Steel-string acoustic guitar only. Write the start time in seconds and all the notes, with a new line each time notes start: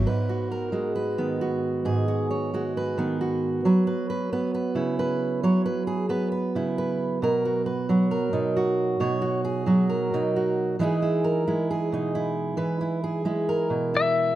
Already playing: B3
0.06 G#2 B4
0.29 F#4
0.52 A#4
0.72 G#3 F#4
0.96 B4
1.18 D#3 B3
1.41 F#4
1.85 G#2 G#4
2.08 F#4
2.31 C#5
2.54 G#3 F#4
2.77 B4
2.98 D#3 B3
3.21 F#4
3.65 F#3 B4
3.87 B4
4.10 B4
4.32 B3 B4
4.54 B4
4.75 C#3 E4
4.99 B4
5.43 F#3 C#5
5.66 B4
5.87 G#4
6.09 B3 B4
6.32 B4
6.55 C#3 E4
6.78 B4
7.22 B2 A#4
7.45 F#4
7.66 B4
7.89 F#3 F#4
8.11 A#4
8.33 B2 D#4
8.56 F#4
9.00 B2 C#5
9.22 F#4
9.45 G#4
9.66 F#3 F#4
9.89 A#4
10.13 B2 D#4
10.36 F#4
10.79 E3 G#3 D#4 E4 G#4
11.02 E4
11.24 A#4
11.47 G#3 E4
11.71 G#4
11.92 B2 D#4
12.15 E4
12.57 E3 B4
12.81 E4
13.04 G#4
13.25 G#3 E4
13.49 A#4
13.70 B2
13.94 E4